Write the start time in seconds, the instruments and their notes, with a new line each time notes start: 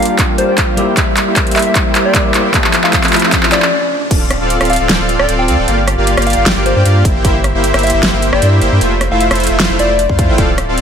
Already playing: clean electric guitar G3 D4 F4 A4 A#4, harp C4, riser
0.03 closed hi-hat
0.05 soft synth lead F5, closed hi-hat
0.10 supersaw synth A#3 F4 G4 D5 F5
0.19 supersaw synth A#3 F4 G4 D5 G5, kick, clap, closed hi-hat
0.29 supersaw synth A#3 F4 G4 D5 F5
0.38 soft synth lead C5, closed hi-hat
0.49 supersaw synth A#3 F4 G4 D5 G5, soft synth lead C5
0.58 supersaw synth A#3 F4 G4 D5 F5, kick, clap, closed hi-hat
0.76 clean electric guitar G3 G4 A#4 D5 E5, supersaw synth A#3 E4 G4 C5 E5, closed hi-hat
0.88 supersaw synth A#3 E4 G4 C5 G5
0.95 clean electric guitar G3 G4 A#4 D5, supersaw synth A#3 E4 G4 C5 E5, kick, clap, closed hi-hat
0.99 clean electric guitar E5
1.17 clap, closed hi-hat
1.27 supersaw synth A#3 E4 G4 C5 E5
1.36 kick, clap, closed hi-hat
1.47 supersaw synth A#3 E4 G4 C5 E5, closed hi-hat
1.51 closed hi-hat
1.56 soft synth lead E5, clap, closed hi-hat
1.59 closed hi-hat
1.62 supersaw synth A#3 E4 G4 C5 E5, soft synth lead E5, closed hi-hat
1.75 supersaw synth A#3 E4 G4 C5 G5, kick, clap, closed hi-hat
1.86 supersaw synth A#3 E4 G4 C5 E5
1.95 clap, closed hi-hat
2.05 supersaw synth A#3 E4 G4 C5 G5, soft synth lead D5
2.14 clean electric guitar G3 G4 A#4 D5 E5, supersaw synth A#3 E4 G4 C5 E5, kick, clap, closed hi-hat
2.34 supersaw synth A#3 E4 G4 C5 E5, clap, closed hi-hat
2.45 supersaw synth A#3 E4 G4 C5 G5
2.52 clean electric guitar F3 F4 G4 A4, supersaw synth A3 E4 F4 C5 E5, kick, clap, closed hi-hat
2.56 clean electric guitar E5
2.64 clap
2.74 clap, closed hi-hat
2.84 supersaw synth A3 E4 F4 C5 E5, soft synth lead F5, clap
2.93 soft synth lead F5, kick, clap, closed hi-hat
3.04 supersaw synth A3 E4 F4 C5 E5, clap, closed hi-hat
3.08 closed hi-hat
3.13 clap, closed hi-hat
3.16 closed hi-hat
3.19 supersaw synth A3 E4 F4 C5 E5, clap, closed hi-hat
3.32 supersaw synth A3 E4 F4 C5 F5, kick, clap, closed hi-hat
3.43 supersaw synth A3 E4 F4 C5 E5, clap
3.52 supersaw synth A3 E4 F4 C5 D5, soft synth lead D5, clap, closed hi-hat
3.62 clap
4.11 sub bass D1, supersaw synth C4 F4 A4 D5 F5, kick, closed hi-hat, crash
4.31 cross-stick, closed hi-hat
4.41 sub bass D1, supersaw synth C4 F4 A4 D5 F5
4.50 closed hi-hat
4.60 sub bass D1, supersaw synth C4 F4 A4 D5 F5, cross-stick, closed hi-hat
4.65 closed hi-hat
4.70 soft synth lead F5, closed hi-hat
4.73 closed hi-hat
4.76 sub bass D1, supersaw synth C4 F4 A4 D5 F5, closed hi-hat
4.80 soft synth lead F5
4.89 sub bass D1, supersaw synth C4 F4 A4 D5 G5, snare, closed hi-hat
5.00 sub bass D1, supersaw synth C4 F4 A4 D5 F5
5.09 closed hi-hat
5.19 sub bass D1, supersaw synth C4 F4 A4 D5 G5, soft synth lead D5, cross-stick
5.28 sub bass D1, supersaw synth C4 F4 A4 D5 F5, closed hi-hat
5.39 soft synth lead G5
5.48 sub bass D2, supersaw synth C4 F4 A4 D5 F5, soft synth lead G5, closed hi-hat
5.58 sub bass D1, supersaw synth C4 F4 A4 D5 G5
5.68 sub bass G1, supersaw synth A#3 F4 G4 D5 F5, closed hi-hat
5.88 cross-stick, closed hi-hat
5.98 sub bass G1, supersaw synth A#3 F4 G4 D5 F5
6.07 closed hi-hat
6.17 sub bass G1, supersaw synth A#3 F4 G4 D5 F5, cross-stick, closed hi-hat
6.22 closed hi-hat
6.27 soft synth lead F5, closed hi-hat
6.30 closed hi-hat
6.33 sub bass G1, supersaw synth A#3 F4 G4 D5 F5, soft synth lead F5, closed hi-hat
6.46 sub bass G1, supersaw synth A#3 F4 G4 D5 G5, snare, closed hi-hat
6.57 sub bass G1, supersaw synth A#3 F4 G4 D5 F5
6.66 soft synth lead C5, closed hi-hat
6.76 sub bass G2, supersaw synth A#3 F4 G4 D5 G5, soft synth lead C5
6.85 sub bass G2, supersaw synth A#3 F4 G4 D5 F5, closed hi-hat
7.05 sub bass G1, supersaw synth A#3 E4 G4 C5 E5, kick, closed hi-hat
7.15 sub bass G1, supersaw synth A#3 E4 G4 C5 G5
7.25 sub bass G1, supersaw synth A#3 E4 G4 C5 E5, kick, closed hi-hat
7.44 cross-stick, closed hi-hat
7.55 sub bass G1, supersaw synth A#3 E4 G4 C5 E5
7.64 closed hi-hat
7.74 sub bass G1, supersaw synth A#3 E4 G4 C5 E5, cross-stick, closed hi-hat
7.79 closed hi-hat
7.83 soft synth lead E5, closed hi-hat
7.87 closed hi-hat
7.90 sub bass G1, supersaw synth E4 G4 C5, closed hi-hat
7.94 supersaw synth A#3 E5, soft synth lead E5
8.03 sub bass G1, supersaw synth A#3 E4 G4 C5 G5, snare, closed hi-hat
8.13 sub bass G1, supersaw synth A#3 E4 G4 C5 E5
8.22 closed hi-hat
8.33 sub bass G1, supersaw synth A#3 E4 G4 C5 G5, soft synth lead D5, cross-stick
8.42 sub bass G2, supersaw synth A#3 E4 G4 C5 E5, closed hi-hat
8.62 sub bass G1, supersaw synth A#3 E4 G4 C5 E5, closed hi-hat
8.72 sub bass G2, supersaw synth A#3 E4 G4 C5 G5
8.81 sub bass F1, supersaw synth A3 E4 F4 C5 E5, closed hi-hat
9.01 cross-stick, closed hi-hat
9.11 sub bass F1, supersaw synth A3 E4 F4 C5 E5, soft synth lead F5
9.21 soft synth lead F5, closed hi-hat
9.31 sub bass F1, supersaw synth A3 E4 F4 C5 E5, cross-stick, closed hi-hat
9.35 closed hi-hat
9.40 closed hi-hat
9.44 closed hi-hat
9.47 sub bass F1, supersaw synth A3 E4 F4 C5 E5, closed hi-hat
9.60 sub bass F1, supersaw synth A3 E4 F4 C5 F5, snare, closed hi-hat
9.70 sub bass F1, supersaw synth A3 E4 F4 C5 E5
9.79 sub bass F1, supersaw synth A3 E4 F4 C5 D5, soft synth lead D5, closed hi-hat
9.99 closed hi-hat
10.09 sub bass F2, supersaw synth A3 E4 F4 C5 F5, kick
10.19 kick, closed hi-hat
10.29 sub bass F1, supersaw synth A3 E4 F4 C5 G5
10.38 sub bass D1, supersaw synth C4 F4 A4 D5 F5, kick, closed hi-hat
10.58 cross-stick, closed hi-hat
10.68 sub bass D1, supersaw synth C4 F4 A4 D5 F5
10.78 closed hi-hat